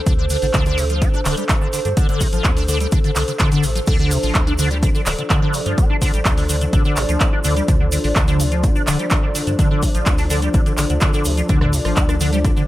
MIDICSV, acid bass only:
0, 0, Header, 1, 2, 480
1, 0, Start_track
1, 0, Key_signature, -1, "minor"
1, 0, Tempo, 476190
1, 66, Time_signature, 4, 2, 24, 8
1, 12775, End_track
2, 0, Start_track
2, 0, Title_t, "Acid bass"
2, 0, Program_c, 0, 38
2, 66, Note_on_c, 0, 50, 83
2, 132, Note_off_c, 0, 50, 0
2, 187, Note_on_c, 0, 50, 74
2, 252, Note_off_c, 0, 50, 0
2, 306, Note_on_c, 0, 50, 76
2, 373, Note_off_c, 0, 50, 0
2, 427, Note_on_c, 0, 50, 76
2, 466, Note_off_c, 0, 50, 0
2, 547, Note_on_c, 0, 50, 102
2, 646, Note_off_c, 0, 50, 0
2, 668, Note_on_c, 0, 50, 97
2, 786, Note_on_c, 0, 48, 94
2, 801, Note_off_c, 0, 50, 0
2, 853, Note_off_c, 0, 48, 0
2, 907, Note_on_c, 0, 53, 72
2, 1026, Note_on_c, 0, 60, 102
2, 1041, Note_off_c, 0, 53, 0
2, 1092, Note_off_c, 0, 60, 0
2, 1147, Note_on_c, 0, 62, 74
2, 1212, Note_off_c, 0, 62, 0
2, 1265, Note_on_c, 0, 50, 102
2, 1365, Note_off_c, 0, 50, 0
2, 1386, Note_on_c, 0, 55, 71
2, 1452, Note_off_c, 0, 55, 0
2, 1506, Note_on_c, 0, 50, 84
2, 1572, Note_off_c, 0, 50, 0
2, 1626, Note_on_c, 0, 50, 75
2, 1692, Note_off_c, 0, 50, 0
2, 1745, Note_on_c, 0, 50, 76
2, 1812, Note_off_c, 0, 50, 0
2, 1866, Note_on_c, 0, 50, 76
2, 1906, Note_off_c, 0, 50, 0
2, 1985, Note_on_c, 0, 50, 106
2, 2085, Note_off_c, 0, 50, 0
2, 2106, Note_on_c, 0, 50, 99
2, 2225, Note_on_c, 0, 48, 98
2, 2240, Note_off_c, 0, 50, 0
2, 2292, Note_off_c, 0, 48, 0
2, 2346, Note_on_c, 0, 53, 76
2, 2465, Note_on_c, 0, 60, 100
2, 2480, Note_off_c, 0, 53, 0
2, 2532, Note_off_c, 0, 60, 0
2, 2586, Note_on_c, 0, 62, 76
2, 2652, Note_off_c, 0, 62, 0
2, 2704, Note_on_c, 0, 50, 93
2, 2805, Note_off_c, 0, 50, 0
2, 2826, Note_on_c, 0, 55, 76
2, 2892, Note_off_c, 0, 55, 0
2, 2945, Note_on_c, 0, 50, 80
2, 3012, Note_off_c, 0, 50, 0
2, 3068, Note_on_c, 0, 50, 79
2, 3133, Note_off_c, 0, 50, 0
2, 3186, Note_on_c, 0, 50, 71
2, 3252, Note_off_c, 0, 50, 0
2, 3306, Note_on_c, 0, 50, 71
2, 3346, Note_off_c, 0, 50, 0
2, 3425, Note_on_c, 0, 50, 99
2, 3525, Note_off_c, 0, 50, 0
2, 3546, Note_on_c, 0, 50, 95
2, 3665, Note_on_c, 0, 48, 99
2, 3680, Note_off_c, 0, 50, 0
2, 3732, Note_off_c, 0, 48, 0
2, 3785, Note_on_c, 0, 53, 76
2, 3825, Note_off_c, 0, 53, 0
2, 3904, Note_on_c, 0, 50, 103
2, 4005, Note_off_c, 0, 50, 0
2, 4026, Note_on_c, 0, 50, 101
2, 4145, Note_on_c, 0, 48, 99
2, 4160, Note_off_c, 0, 50, 0
2, 4212, Note_off_c, 0, 48, 0
2, 4266, Note_on_c, 0, 53, 73
2, 4384, Note_on_c, 0, 60, 100
2, 4399, Note_off_c, 0, 53, 0
2, 4452, Note_off_c, 0, 60, 0
2, 4506, Note_on_c, 0, 62, 71
2, 4572, Note_off_c, 0, 62, 0
2, 4625, Note_on_c, 0, 50, 97
2, 4725, Note_off_c, 0, 50, 0
2, 4746, Note_on_c, 0, 55, 74
2, 4812, Note_off_c, 0, 55, 0
2, 4864, Note_on_c, 0, 50, 85
2, 4932, Note_off_c, 0, 50, 0
2, 4986, Note_on_c, 0, 50, 75
2, 5052, Note_off_c, 0, 50, 0
2, 5105, Note_on_c, 0, 50, 76
2, 5172, Note_off_c, 0, 50, 0
2, 5226, Note_on_c, 0, 50, 74
2, 5266, Note_off_c, 0, 50, 0
2, 5345, Note_on_c, 0, 50, 100
2, 5445, Note_off_c, 0, 50, 0
2, 5466, Note_on_c, 0, 50, 100
2, 5586, Note_on_c, 0, 48, 100
2, 5601, Note_off_c, 0, 50, 0
2, 5652, Note_off_c, 0, 48, 0
2, 5705, Note_on_c, 0, 53, 76
2, 5825, Note_on_c, 0, 60, 103
2, 5840, Note_off_c, 0, 53, 0
2, 5892, Note_off_c, 0, 60, 0
2, 5945, Note_on_c, 0, 62, 74
2, 6012, Note_off_c, 0, 62, 0
2, 6065, Note_on_c, 0, 50, 100
2, 6165, Note_off_c, 0, 50, 0
2, 6186, Note_on_c, 0, 55, 72
2, 6252, Note_off_c, 0, 55, 0
2, 6305, Note_on_c, 0, 50, 85
2, 6372, Note_off_c, 0, 50, 0
2, 6426, Note_on_c, 0, 50, 72
2, 6492, Note_off_c, 0, 50, 0
2, 6545, Note_on_c, 0, 50, 74
2, 6612, Note_off_c, 0, 50, 0
2, 6667, Note_on_c, 0, 50, 75
2, 6706, Note_off_c, 0, 50, 0
2, 6785, Note_on_c, 0, 50, 102
2, 6885, Note_off_c, 0, 50, 0
2, 6907, Note_on_c, 0, 50, 96
2, 7025, Note_on_c, 0, 48, 104
2, 7041, Note_off_c, 0, 50, 0
2, 7092, Note_off_c, 0, 48, 0
2, 7146, Note_on_c, 0, 53, 73
2, 7265, Note_on_c, 0, 60, 102
2, 7280, Note_off_c, 0, 53, 0
2, 7332, Note_off_c, 0, 60, 0
2, 7387, Note_on_c, 0, 62, 73
2, 7452, Note_off_c, 0, 62, 0
2, 7504, Note_on_c, 0, 50, 99
2, 7605, Note_off_c, 0, 50, 0
2, 7626, Note_on_c, 0, 55, 74
2, 7692, Note_off_c, 0, 55, 0
2, 7745, Note_on_c, 0, 50, 85
2, 7812, Note_off_c, 0, 50, 0
2, 7866, Note_on_c, 0, 50, 75
2, 7932, Note_off_c, 0, 50, 0
2, 7985, Note_on_c, 0, 50, 79
2, 8052, Note_off_c, 0, 50, 0
2, 8106, Note_on_c, 0, 50, 76
2, 8146, Note_off_c, 0, 50, 0
2, 8225, Note_on_c, 0, 50, 99
2, 8325, Note_off_c, 0, 50, 0
2, 8346, Note_on_c, 0, 50, 95
2, 8464, Note_on_c, 0, 48, 96
2, 8479, Note_off_c, 0, 50, 0
2, 8532, Note_off_c, 0, 48, 0
2, 8586, Note_on_c, 0, 53, 78
2, 8704, Note_on_c, 0, 60, 107
2, 8719, Note_off_c, 0, 53, 0
2, 8771, Note_off_c, 0, 60, 0
2, 8826, Note_on_c, 0, 62, 74
2, 8892, Note_off_c, 0, 62, 0
2, 8944, Note_on_c, 0, 50, 98
2, 9045, Note_off_c, 0, 50, 0
2, 9066, Note_on_c, 0, 55, 71
2, 9132, Note_off_c, 0, 55, 0
2, 9186, Note_on_c, 0, 50, 82
2, 9253, Note_off_c, 0, 50, 0
2, 9306, Note_on_c, 0, 50, 71
2, 9372, Note_off_c, 0, 50, 0
2, 9425, Note_on_c, 0, 50, 80
2, 9492, Note_off_c, 0, 50, 0
2, 9546, Note_on_c, 0, 50, 76
2, 9586, Note_off_c, 0, 50, 0
2, 9665, Note_on_c, 0, 50, 101
2, 9765, Note_off_c, 0, 50, 0
2, 9785, Note_on_c, 0, 50, 96
2, 9905, Note_on_c, 0, 48, 101
2, 9920, Note_off_c, 0, 50, 0
2, 9972, Note_off_c, 0, 48, 0
2, 10025, Note_on_c, 0, 53, 79
2, 10145, Note_on_c, 0, 60, 107
2, 10160, Note_off_c, 0, 53, 0
2, 10212, Note_off_c, 0, 60, 0
2, 10266, Note_on_c, 0, 62, 74
2, 10332, Note_off_c, 0, 62, 0
2, 10386, Note_on_c, 0, 50, 96
2, 10486, Note_off_c, 0, 50, 0
2, 10506, Note_on_c, 0, 55, 77
2, 10572, Note_off_c, 0, 55, 0
2, 10625, Note_on_c, 0, 50, 87
2, 10692, Note_off_c, 0, 50, 0
2, 10745, Note_on_c, 0, 50, 72
2, 10811, Note_off_c, 0, 50, 0
2, 10864, Note_on_c, 0, 50, 77
2, 10932, Note_off_c, 0, 50, 0
2, 10985, Note_on_c, 0, 50, 72
2, 11025, Note_off_c, 0, 50, 0
2, 11105, Note_on_c, 0, 50, 102
2, 11205, Note_off_c, 0, 50, 0
2, 11225, Note_on_c, 0, 50, 93
2, 11345, Note_on_c, 0, 48, 101
2, 11360, Note_off_c, 0, 50, 0
2, 11412, Note_off_c, 0, 48, 0
2, 11466, Note_on_c, 0, 53, 73
2, 11506, Note_off_c, 0, 53, 0
2, 11584, Note_on_c, 0, 50, 105
2, 11685, Note_off_c, 0, 50, 0
2, 11706, Note_on_c, 0, 50, 95
2, 11824, Note_on_c, 0, 48, 101
2, 11839, Note_off_c, 0, 50, 0
2, 11891, Note_off_c, 0, 48, 0
2, 11945, Note_on_c, 0, 53, 73
2, 12063, Note_on_c, 0, 60, 105
2, 12078, Note_off_c, 0, 53, 0
2, 12131, Note_off_c, 0, 60, 0
2, 12186, Note_on_c, 0, 62, 71
2, 12252, Note_off_c, 0, 62, 0
2, 12304, Note_on_c, 0, 50, 99
2, 12405, Note_off_c, 0, 50, 0
2, 12424, Note_on_c, 0, 55, 74
2, 12491, Note_off_c, 0, 55, 0
2, 12544, Note_on_c, 0, 50, 82
2, 12612, Note_off_c, 0, 50, 0
2, 12665, Note_on_c, 0, 50, 79
2, 12731, Note_off_c, 0, 50, 0
2, 12775, End_track
0, 0, End_of_file